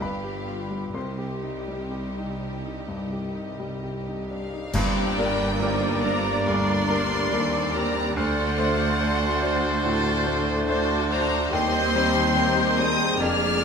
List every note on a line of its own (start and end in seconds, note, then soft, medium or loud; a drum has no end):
0.01 0.94 G1 medium
0.01 0.95 G1 medium
0.01 0.92 G2 medium
0.01 0.95 G2 soft
0.01 0.93 G3 medium
0.01 0.93 G4 soft
0.01 0.92 B4 soft
0.01 0.95 F5 medium
0.01 0.91 B5 medium
0.24 0.61 G4 soft
0.46 0.85 F4 soft
0.70 0.95 G3 soft
0.94 2.85 C2 medium
0.94 4.49 C2 soft
0.94 4.50 C2 soft
0.94 4.49 C3 soft
0.94 2.38 C3 medium
0.94 4.50 G3 medium
0.94 4.50 G4 soft
0.94 4.26 C5 soft
0.94 4.25 D#5 soft
0.94 4.25 C6 medium
1.18 1.58 G4 soft
1.43 1.83 D#4 soft
1.68 2.08 G3 soft
1.91 2.31 G4 soft
2.17 2.56 D#4 soft
2.40 2.65 D4 soft
2.65 3.03 D#4 soft
2.88 3.26 G2 soft
3.12 3.50 G4 soft
3.35 3.73 D#4 soft
3.60 3.97 G3 soft
3.83 4.20 G4 soft
4.07 4.44 D#4 soft
4.28 4.52 D4 soft
4.28 4.70 F5 medium
4.53 4.75 D#4 soft
4.73 7.28 G1 medium
4.73 7.33 G1 medium
4.73 5.99 G2 medium
4.73 7.27 G2 medium
4.73 5.17 G2 medium
4.73 8.12 A#3 medium
4.73 5.14 C4 medium
4.73 5.56 D4 medium
4.73 8.12 D4 medium
4.73 5.57 G4 medium
4.73 8.12 D5 medium
4.73 5.57 D5 medium
4.73 6.03 G5 loud
4.73 8.12 A#5 medium
4.73 concert bass drum medium
4.73 crash medium
5.17 5.57 G3 medium
5.17 6.45 A#3 medium
5.17 5.58 D4 medium
5.17 5.58 A#4 medium
5.60 6.00 G3 medium
5.60 6.00 D4 medium
5.60 6.03 D#4 medium
5.60 6.44 A#4 medium
5.60 6.00 A#4 medium
5.60 6.46 C5 medium
6.03 6.42 G3 medium
6.03 7.32 D4 medium
6.03 6.43 D4 medium
6.03 6.43 A#4 medium
6.03 6.45 A#5 medium
6.45 6.88 D2 medium
6.45 8.16 G3 medium
6.45 7.31 A#4 medium
6.45 7.74 C6 loud
6.88 7.28 G3 medium
6.88 7.29 D4 medium
6.88 7.28 A#4 medium
6.88 7.30 C5 medium
7.31 8.16 D#2 medium
7.31 8.17 D#2 medium
7.31 7.71 G3 medium
7.31 8.16 C4 medium
7.31 7.71 D4 medium
7.31 7.73 A4 medium
7.31 7.71 A#4 medium
7.31 8.14 D5 medium
7.73 8.13 G3 medium
7.73 8.13 D4 medium
7.73 8.16 G4 medium
7.73 8.13 A#4 medium
7.73 8.16 A#5 loud
8.15 11.51 D2 medium
8.15 11.52 D2 medium
8.15 8.57 D2 medium
8.15 9.80 A3 medium
8.15 11.35 A3 medium
8.15 8.99 D4 medium
8.15 11.35 D4 medium
8.15 8.98 F#4 medium
8.15 12.87 C5 medium
8.15 11.21 C5 medium
8.15 9.80 D5 medium
8.15 10.63 F#5 loud
8.15 11.22 A6 medium
8.58 8.96 A3 medium
8.58 8.96 D4 medium
8.58 8.96 C5 medium
8.99 9.38 A3 medium
8.99 9.38 D4 medium
8.99 9.40 F#4 medium
8.99 10.64 F#4 medium
8.99 9.38 C5 medium
9.41 9.80 A3 medium
9.41 9.80 D4 medium
9.41 10.65 A4 medium
9.41 9.80 C5 medium
9.83 10.24 A2 medium
9.83 10.66 A3 medium
9.83 10.65 D5 medium
10.26 10.63 A3 medium
10.26 10.64 D4 medium
10.26 10.64 C5 medium
10.66 11.06 A3 medium
10.66 11.52 D4 medium
10.66 11.07 D4 medium
10.66 11.50 F#4 medium
10.66 11.49 A4 medium
10.66 11.07 C5 medium
11.09 11.48 A3 medium
11.09 11.49 D4 medium
11.09 11.50 C5 medium
11.09 11.49 C5 medium
11.09 11.49 A#5 loud
11.52 13.15 D#2 medium
11.52 13.02 D#2 medium
11.52 13.16 D#2 loud
11.52 11.92 D#2 loud
11.52 13.16 G3 medium
11.52 13.16 C4 medium
11.52 13.16 D#4 medium
11.52 12.33 G4 medium
11.52 12.34 C5 medium
11.52 13.15 C5 medium
11.52 12.33 D#5 medium
11.52 12.76 C6 loud
11.52 13.16 G6 medium
11.96 12.31 G3 medium
11.96 12.32 C4 medium
11.96 12.32 C5 medium
12.34 12.72 G3 medium
12.34 12.73 C4 medium
12.34 12.75 G4 medium
12.34 13.19 A#4 medium
12.34 12.73 C5 medium
12.34 13.17 D#5 medium
12.75 13.16 G3 medium
12.75 13.16 C4 medium
12.75 13.64 G#4 medium
12.75 13.16 C5 medium
12.75 13.19 D#6 loud
13.18 13.64 F1 medium
13.18 13.64 F2 medium
13.18 13.62 F2 medium
13.18 13.64 G#3 medium
13.18 13.62 A#3 medium
13.18 13.64 D4 medium
13.18 13.64 G#4 medium
13.18 13.64 D5 medium
13.18 13.64 F6 loud
13.18 13.64 G#6 medium